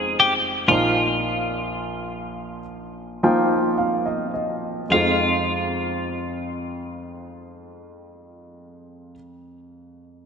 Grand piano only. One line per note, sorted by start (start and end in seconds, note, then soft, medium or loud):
0.00 0.63 F1 medium
0.00 0.63 F2 medium
0.00 0.60 G#3 medium
0.00 0.60 C4 medium
0.00 0.60 D#4 medium
0.00 0.60 F4 medium
0.68 4.87 A#1 soft
0.68 4.87 A#2 soft
0.68 2.60 F3 medium
0.68 2.60 A#3 soft
0.68 2.60 D#4 soft
0.68 2.60 F4 medium
3.23 4.82 F3 medium
3.23 4.82 A#3 medium
3.23 4.82 D#4 medium
3.23 4.82 F4 medium
3.23 3.74 G5 medium
3.78 4.04 F5 soft
4.06 4.32 D#5 soft
4.34 4.87 D#5 soft
4.89 9.13 F2 soft
4.89 9.11 G#3 soft
4.89 9.12 C4 soft
4.89 9.14 D#4 soft
4.93 9.15 F4 medium